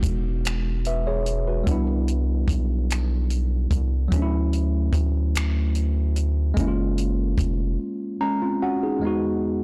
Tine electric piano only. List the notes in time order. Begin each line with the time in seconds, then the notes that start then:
Already playing: G#3 B3 D#4 F#4
0.87 B4 E5
1.07 G#4 C#5
1.48 F#4 B4
1.64 G3 B3
1.69 D4 E4
4.08 F#3 A3
4.13 C#4 D4
4.22 E4
6.54 G#3 A#3
6.58 C#4 E4
6.68 F4
8.21 G#3 C#4 A#5
8.42 C4 F4
8.62 C#4 F#4 F#5
8.83 D#4 G#4
8.99 E2 G#3 B3
9.05 D#4 F#4